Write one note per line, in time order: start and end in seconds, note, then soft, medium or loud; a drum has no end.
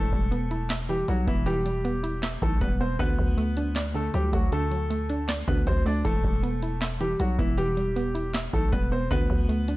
0.00 0.12 E1 loud
0.00 0.88 E3 loud
0.00 0.66 A3 medium
0.00 0.66 A4 loud
0.13 1.04 E1 loud
0.13 1.07 G3 medium
0.13 kick loud
0.31 1.26 B3 medium
0.31 closed hi-hat medium
0.51 1.47 E4 medium
0.51 closed hi-hat medium
0.70 1.66 E5 loud
0.70 snare loud
0.70 clap loud
0.70 closed hi-hat medium
0.89 1.45 E3 medium
0.89 1.04 G3 medium
0.89 1.04 G4 medium
0.89 closed hi-hat medium
1.08 1.27 B1 loud
1.08 1.23 F#3 medium
1.08 1.64 G3 medium
1.08 1.23 F#4 medium
1.08 closed hi-hat medium
1.27 2.38 E1 loud
1.27 1.43 E3 medium
1.27 1.83 B3 medium
1.27 1.42 E4 medium
1.27 kick loud
1.27 closed hi-hat medium
1.46 2.41 E3 loud
1.46 2.19 G3 medium
1.46 2.19 G4 loud
1.46 closed hi-hat medium
1.66 2.60 G3 medium
1.66 closed hi-hat medium
1.85 2.79 B3 medium
1.85 closed hi-hat medium
2.03 2.99 E4 medium
2.03 closed hi-hat medium
2.23 2.99 E5 loud
2.23 snare loud
2.23 clap loud
2.23 closed hi-hat medium
2.42 2.60 B1 loud
2.42 2.99 E3 medium
2.42 2.58 A3 medium
2.42 2.57 A4 medium
2.42 kick loud
2.42 closed hi-hat medium
2.61 2.98 E1 loud
2.61 3.00 G3 loud
2.61 2.76 B3 medium
2.61 2.76 B4 medium
2.61 kick medium
2.61 closed hi-hat medium
2.80 2.99 B3 medium
2.80 2.96 C4 medium
2.80 2.95 C5 medium
2.99 3.18 D2 loud
2.99 3.93 D3 loud
2.99 3.72 B3 medium
2.99 3.72 B4 loud
2.99 kick loud
2.99 closed hi-hat medium
3.18 4.10 D2 loud
3.18 4.13 F#3 medium
3.18 kick medium
3.37 4.31 A3 medium
3.37 closed hi-hat medium
3.57 4.52 D4 medium
3.57 closed hi-hat medium
3.76 4.71 D5 loud
3.76 snare loud
3.76 clap loud
3.76 closed hi-hat medium
3.94 4.51 D3 medium
3.94 4.10 A3 medium
3.94 4.10 A4 medium
3.94 closed hi-hat medium
4.14 4.32 D2 loud
4.14 4.70 F#3 medium
4.14 4.29 G3 medium
4.14 4.29 G4 medium
4.14 closed hi-hat medium
4.33 5.44 D2 loud
4.33 4.48 F#3 medium
4.33 4.89 A3 medium
4.33 4.48 F#4 medium
4.33 kick loud
4.33 closed hi-hat medium
4.52 5.47 D3 loud
4.52 5.25 A3 medium
4.52 5.25 A4 loud
4.52 closed hi-hat medium
4.71 5.65 F#3 medium
4.71 closed hi-hat medium
4.90 5.84 A3 medium
4.90 closed hi-hat medium
5.09 6.05 D4 medium
5.09 closed hi-hat medium
5.28 6.05 D5 loud
5.28 snare loud
5.28 clap loud
5.28 closed hi-hat medium
5.48 5.66 D2 loud
5.48 6.05 D3 medium
5.48 5.63 B3 medium
5.48 5.62 B4 medium
5.48 kick loud
5.48 closed hi-hat medium
5.67 6.04 D2 loud
5.67 6.05 F#3 medium
5.67 5.82 C4 medium
5.67 5.82 C5 medium
5.67 kick medium
5.67 closed hi-hat medium
5.86 6.05 A3 medium
5.86 6.01 D4 medium
5.86 6.01 D5 medium
5.86 open hi-hat medium
6.05 6.23 E1 loud
6.05 6.99 E3 medium
6.05 6.78 A3 medium
6.05 6.77 A4 loud
6.05 kick loud
6.05 closed hi-hat medium
6.24 7.16 E1 loud
6.24 7.19 G3 medium
6.24 kick medium
6.43 7.37 B3 medium
6.43 closed hi-hat medium
6.62 7.58 E4 medium
6.62 closed hi-hat medium
6.82 7.77 E5 loud
6.82 snare loud
6.82 clap loud
6.82 closed hi-hat medium
7.01 7.57 E3 medium
7.01 7.16 G3 medium
7.01 7.15 G4 medium
7.01 closed hi-hat medium
7.20 7.38 B1 loud
7.20 7.35 F#3 medium
7.20 7.76 G3 medium
7.20 7.34 F#4 medium
7.20 closed hi-hat medium
7.39 8.50 E1 loud
7.39 7.54 E3 medium
7.39 7.95 B3 medium
7.39 7.54 E4 medium
7.39 kick loud
7.39 closed hi-hat medium
7.58 8.52 E3 loud
7.58 8.31 G3 medium
7.58 8.30 G4 loud
7.58 closed hi-hat medium
7.77 8.72 G3 medium
7.77 closed hi-hat medium
7.96 8.90 B3 medium
7.96 closed hi-hat medium
8.15 9.11 E4 medium
8.15 closed hi-hat medium
8.34 9.11 E5 loud
8.34 snare loud
8.34 clap loud
8.34 closed hi-hat medium
8.53 8.72 B1 loud
8.53 9.11 E3 medium
8.53 8.69 A3 medium
8.53 8.69 A4 medium
8.53 kick loud
8.53 closed hi-hat medium
8.72 9.09 E1 loud
8.72 9.11 G3 medium
8.72 8.88 B3 medium
8.72 8.87 B4 medium
8.72 kick medium
8.72 closed hi-hat medium
8.92 9.11 B3 medium
8.92 9.07 C4 medium
8.92 9.07 C5 medium
9.11 9.29 D2 loud
9.11 9.77 D3 medium
9.11 9.77 B3 medium
9.11 9.77 B4 loud
9.11 kick loud
9.11 closed hi-hat medium
9.30 9.77 D2 loud
9.30 9.77 F#3 medium
9.30 kick loud
9.49 9.77 A3 medium
9.49 closed hi-hat medium
9.68 9.77 D4 medium
9.68 closed hi-hat medium